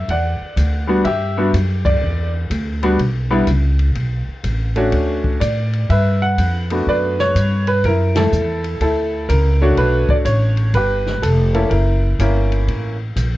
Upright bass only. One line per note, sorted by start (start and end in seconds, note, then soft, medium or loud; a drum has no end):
0.08 0.38 E2 medium
0.40 muted upright bass stroke soft
0.56 1.03 D2 medium
1.05 1.52 G2 medium
1.53 2.00 F#2 medium
2.01 2.49 E2 medium
2.50 2.97 D2 medium
2.99 3.46 B1 medium
3.47 3.94 C#2 medium
3.95 4.25 B1 medium
4.27 muted upright bass stroke soft
4.44 4.91 A1 medium
4.92 5.39 D2 medium
5.41 5.88 A2 medium
5.89 6.36 G2 medium
6.38 6.85 F2 medium
6.86 7.33 F#2 medium
7.35 7.82 G2 medium
7.84 8.30 F#2 medium
8.32 8.79 E2 medium
8.80 9.27 D2 medium
9.29 9.76 C#2 medium
9.77 10.07 B1 medium
10.09 muted upright bass stroke soft
10.25 10.72 A1 medium
10.73 11.21 G1 medium
11.22 11.69 F1 medium
11.70 12.18 F#1 medium
12.19 12.66 G1 medium
12.68 13.15 A1 medium
13.16 13.37 A#1 medium